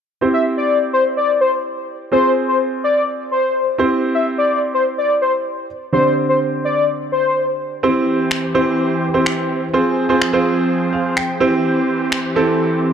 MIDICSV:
0, 0, Header, 1, 5, 480
1, 0, Start_track
1, 0, Key_signature, 0, "major"
1, 0, Tempo, 476190
1, 220, Time_signature, 4, 2, 24, 8
1, 13034, End_track
2, 0, Start_track
2, 0, Title_t, "Analog synth lead"
2, 0, Program_c, 0, 81
2, 337, Note_on_c, 0, 76, 73
2, 441, Note_off_c, 0, 76, 0
2, 579, Note_on_c, 0, 74, 70
2, 784, Note_off_c, 0, 74, 0
2, 940, Note_on_c, 0, 72, 82
2, 1042, Note_off_c, 0, 72, 0
2, 1178, Note_on_c, 0, 74, 78
2, 1383, Note_off_c, 0, 74, 0
2, 1421, Note_on_c, 0, 72, 74
2, 1523, Note_off_c, 0, 72, 0
2, 2139, Note_on_c, 0, 72, 105
2, 2345, Note_off_c, 0, 72, 0
2, 2503, Note_on_c, 0, 72, 66
2, 2604, Note_off_c, 0, 72, 0
2, 2861, Note_on_c, 0, 74, 82
2, 3066, Note_off_c, 0, 74, 0
2, 3342, Note_on_c, 0, 72, 85
2, 3679, Note_off_c, 0, 72, 0
2, 4179, Note_on_c, 0, 76, 72
2, 4282, Note_off_c, 0, 76, 0
2, 4417, Note_on_c, 0, 74, 74
2, 4623, Note_off_c, 0, 74, 0
2, 4780, Note_on_c, 0, 72, 78
2, 4882, Note_off_c, 0, 72, 0
2, 5021, Note_on_c, 0, 74, 78
2, 5226, Note_off_c, 0, 74, 0
2, 5260, Note_on_c, 0, 72, 74
2, 5362, Note_off_c, 0, 72, 0
2, 5979, Note_on_c, 0, 72, 97
2, 6184, Note_off_c, 0, 72, 0
2, 6340, Note_on_c, 0, 72, 68
2, 6442, Note_off_c, 0, 72, 0
2, 6701, Note_on_c, 0, 74, 82
2, 6905, Note_off_c, 0, 74, 0
2, 7178, Note_on_c, 0, 72, 85
2, 7517, Note_off_c, 0, 72, 0
2, 13034, End_track
3, 0, Start_track
3, 0, Title_t, "Grand piano"
3, 0, Program_c, 1, 0
3, 215, Note_on_c, 1, 60, 60
3, 218, Note_on_c, 1, 64, 55
3, 222, Note_on_c, 1, 67, 57
3, 225, Note_on_c, 1, 72, 68
3, 2099, Note_off_c, 1, 60, 0
3, 2101, Note_off_c, 1, 64, 0
3, 2103, Note_off_c, 1, 67, 0
3, 2104, Note_off_c, 1, 72, 0
3, 2133, Note_on_c, 1, 60, 61
3, 2137, Note_on_c, 1, 65, 54
3, 2140, Note_on_c, 1, 68, 56
3, 2143, Note_on_c, 1, 72, 66
3, 3783, Note_off_c, 1, 60, 0
3, 3785, Note_off_c, 1, 65, 0
3, 3786, Note_off_c, 1, 68, 0
3, 3788, Note_off_c, 1, 72, 0
3, 3815, Note_on_c, 1, 60, 76
3, 3818, Note_on_c, 1, 64, 70
3, 3822, Note_on_c, 1, 67, 66
3, 3825, Note_on_c, 1, 72, 83
3, 5699, Note_off_c, 1, 60, 0
3, 5701, Note_off_c, 1, 64, 0
3, 5702, Note_off_c, 1, 67, 0
3, 5704, Note_off_c, 1, 72, 0
3, 5973, Note_on_c, 1, 50, 60
3, 5975, Note_on_c, 1, 60, 57
3, 5977, Note_on_c, 1, 62, 57
3, 5979, Note_on_c, 1, 67, 57
3, 5982, Note_on_c, 1, 72, 69
3, 7858, Note_off_c, 1, 50, 0
3, 7859, Note_off_c, 1, 60, 0
3, 7860, Note_off_c, 1, 62, 0
3, 7861, Note_off_c, 1, 67, 0
3, 7863, Note_off_c, 1, 72, 0
3, 7894, Note_on_c, 1, 60, 83
3, 7896, Note_on_c, 1, 64, 74
3, 7898, Note_on_c, 1, 67, 72
3, 7899, Note_on_c, 1, 72, 90
3, 8492, Note_off_c, 1, 60, 0
3, 8493, Note_off_c, 1, 64, 0
3, 8494, Note_off_c, 1, 67, 0
3, 8494, Note_off_c, 1, 72, 0
3, 8613, Note_on_c, 1, 60, 82
3, 8615, Note_on_c, 1, 64, 73
3, 8616, Note_on_c, 1, 67, 76
3, 8618, Note_on_c, 1, 72, 93
3, 9112, Note_off_c, 1, 60, 0
3, 9113, Note_off_c, 1, 64, 0
3, 9114, Note_off_c, 1, 67, 0
3, 9115, Note_off_c, 1, 72, 0
3, 9213, Note_on_c, 1, 60, 76
3, 9214, Note_on_c, 1, 64, 68
3, 9216, Note_on_c, 1, 67, 71
3, 9217, Note_on_c, 1, 72, 86
3, 9712, Note_off_c, 1, 60, 0
3, 9712, Note_off_c, 1, 64, 0
3, 9714, Note_off_c, 1, 67, 0
3, 9714, Note_off_c, 1, 72, 0
3, 9813, Note_on_c, 1, 60, 83
3, 9815, Note_on_c, 1, 65, 79
3, 9817, Note_on_c, 1, 68, 75
3, 9819, Note_on_c, 1, 72, 96
3, 10114, Note_off_c, 1, 60, 0
3, 10115, Note_off_c, 1, 65, 0
3, 10116, Note_off_c, 1, 68, 0
3, 10117, Note_off_c, 1, 72, 0
3, 10172, Note_on_c, 1, 60, 85
3, 10174, Note_on_c, 1, 65, 78
3, 10176, Note_on_c, 1, 68, 77
3, 10178, Note_on_c, 1, 72, 93
3, 10374, Note_off_c, 1, 60, 0
3, 10375, Note_off_c, 1, 65, 0
3, 10376, Note_off_c, 1, 68, 0
3, 10377, Note_off_c, 1, 72, 0
3, 10412, Note_on_c, 1, 60, 86
3, 10413, Note_on_c, 1, 65, 80
3, 10415, Note_on_c, 1, 68, 79
3, 10417, Note_on_c, 1, 72, 94
3, 11014, Note_on_c, 1, 77, 67
3, 11209, Note_off_c, 1, 60, 0
3, 11210, Note_off_c, 1, 65, 0
3, 11211, Note_off_c, 1, 68, 0
3, 11211, Note_off_c, 1, 72, 0
3, 11240, Note_off_c, 1, 77, 0
3, 11255, Note_on_c, 1, 79, 69
3, 11495, Note_on_c, 1, 60, 92
3, 11495, Note_on_c, 1, 64, 83
3, 11498, Note_on_c, 1, 67, 87
3, 11500, Note_on_c, 1, 72, 98
3, 11704, Note_off_c, 1, 79, 0
3, 12290, Note_off_c, 1, 60, 0
3, 12291, Note_off_c, 1, 64, 0
3, 12292, Note_off_c, 1, 67, 0
3, 12293, Note_off_c, 1, 72, 0
3, 12456, Note_on_c, 1, 60, 81
3, 12458, Note_on_c, 1, 64, 78
3, 12460, Note_on_c, 1, 67, 78
3, 12461, Note_on_c, 1, 69, 96
3, 12954, Note_off_c, 1, 60, 0
3, 12955, Note_off_c, 1, 64, 0
3, 12956, Note_off_c, 1, 67, 0
3, 12956, Note_off_c, 1, 69, 0
3, 13034, End_track
4, 0, Start_track
4, 0, Title_t, "Supersaw synth"
4, 0, Program_c, 2, 81
4, 7898, Note_on_c, 2, 67, 71
4, 7899, Note_on_c, 2, 52, 80
4, 7899, Note_on_c, 2, 72, 84
4, 7900, Note_on_c, 2, 60, 70
4, 9800, Note_off_c, 2, 52, 0
4, 9800, Note_off_c, 2, 67, 0
4, 9800, Note_off_c, 2, 72, 0
4, 9820, Note_on_c, 2, 53, 77
4, 9820, Note_on_c, 2, 68, 72
4, 9820, Note_on_c, 2, 72, 85
4, 11483, Note_off_c, 2, 53, 0
4, 11483, Note_off_c, 2, 68, 0
4, 11497, Note_on_c, 2, 52, 75
4, 11497, Note_on_c, 2, 67, 71
4, 13034, Note_off_c, 2, 52, 0
4, 13034, Note_off_c, 2, 60, 0
4, 13034, Note_off_c, 2, 67, 0
4, 13034, Note_off_c, 2, 72, 0
4, 13034, End_track
5, 0, Start_track
5, 0, Title_t, "Drums"
5, 8377, Note_on_c, 9, 26, 98
5, 8477, Note_off_c, 9, 26, 0
5, 9336, Note_on_c, 9, 26, 100
5, 9437, Note_off_c, 9, 26, 0
5, 10297, Note_on_c, 9, 26, 97
5, 10398, Note_off_c, 9, 26, 0
5, 11258, Note_on_c, 9, 26, 103
5, 11359, Note_off_c, 9, 26, 0
5, 12217, Note_on_c, 9, 26, 95
5, 12318, Note_off_c, 9, 26, 0
5, 13034, End_track
0, 0, End_of_file